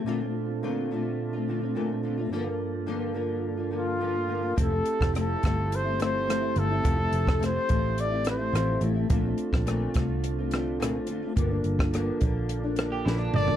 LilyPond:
<<
  \new Staff \with { instrumentName = "Trumpet" } { \time 4/4 \key f \major \tempo 4 = 106 r1 | r2 r8 f'4. | a'4 a'4 c''8 c''4 a'8~ | a'4 c''4 d''8 c''4 r8 |
r1 | r2. r8 d''8 | }
  \new Staff \with { instrumentName = "Clean electric guitar" } { \time 4/4 \key f \major r1 | r1 | r1 | r1 |
r1 | r2 r8. g'16 e'16 d'8. | }
  \new Staff \with { instrumentName = "Tonewheel organ" } { \time 4/4 \key f \major <bes, c' d' f' a'>1 | <g, bes d' f' a'>1 | <c' e' g' a'>1~ | <c' e' g' a'>1 |
<c' d' f' a'>1 | <bes d' f' a'>1 | }
  \new Staff \with { instrumentName = "Nylon-string guitar" } { \time 4/4 \key f \major <bes, d a c' f'>16 <a c' f'>8. <bes, d a c' f'>8 <d a c' f'>8. <a c' f'>16 <d a c' f'>16 <a c' f'>16 <bes, d a c' f'>16 <a c' f'>16 <d a c' f'>16 <a c' f'>16 | <g, d f bes f'>16 <f bes f'>8. <g, d f bes f'>8 <d f bes f'>8. <f bes f'>16 <d f bes f'>8 <g, d f bes f'>16 <f bes f'>16 <d f bes f'>16 <f bes f'>16 | <f a c' e'>16 <a c' e'>8. <f a c' e'>8 <f a c' e'>8. <a c' e'>16 <f a c' e'>8 <f a c' e'>16 <a c' e'>16 <f a c' e'>16 <a c' e'>16 | <f a c' e'>16 <a c' e'>8. <f a c' e'>8 <f a c' e'>8. <a c' e'>16 <f a c' e'>16 <a c' e'>16 <f a c' e'>8 <f a c' e'>16 <a c' e'>16 |
<bes, d a c' f'>16 <a c' f'>8. <bes, d a c' f'>8 <a c' f'>8. <a c' f'>16 <d a c' f'>8 <bes, d a c' f'>16 <a c' f'>16 <d a c' f'>16 <a c' f'>16 | <g, d f bes d'>16 <f bes d'>8. <g, d f bes d'>8 <d f bes d'>8. <f bes d'>16 <d f bes d'>8 <g, d f bes d'>8 <d f bes d'>16 <f bes d'>16 | }
  \new Staff \with { instrumentName = "Picked electric bass" } { \clef bass \time 4/4 \key f \major r1 | r1 | f,,8 r16 f,,8. g,,2 g,,8 | f,,8 f,,4 a,,4. a,,8 a,,8 |
bes,,8 r16 bes,,8. c,2 f,,8 | g,,8 g,,4 bes,,4. bes,,8 g,,8 | }
  \new DrumStaff \with { instrumentName = "Drums" } \drummode { \time 4/4 r4 r4 r4 r4 | r4 r4 r4 r4 | <hh bd>8 hh16 <bd ss>16 <hh ss>8 <hh bd ss>8 hh8 <hh ss>8 <hh ss>8 hh8 | <hh bd>8 hh16 <bd ss>16 <hh ss>8 <hh bd>8 hh8 <hh ss>8 <hh ss>8 hh8 |
<hh bd>8 hh16 <bd ss>16 <hh ss>8 <hh bd ss>8 hh8 <hh ss>8 <hh ss>8 hh8 | <hh bd>8 hh16 <bd ss>16 <hh ss>8 <hh bd>8 hh8 <hh ss>8 sn8 toml16 tomfh16 | }
>>